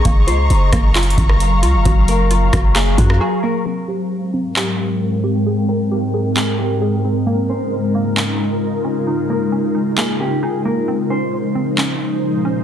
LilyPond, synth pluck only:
\new Staff \with { instrumentName = "Synth pluck" } { \time 4/4 \key aes \major \tempo 4 = 133 bes8 f'4 bes8 f'4. f'8 | ges'8 bes8 f'8 ges'8 bes8 f'8 ges'8 bes8 | c'8 g'4 c'8 g'4. g'8 | aes'8 c'8 g'8 aes'8 c'8 g'8 aes'8 c'8 |
bes8 des'4 bes8 des'4. des'8 | ees'8 bes8 des'8 ees'8 bes8 des'8 ees'8 bes8 | c'8 des'4 c'8 des'4. des'8 | }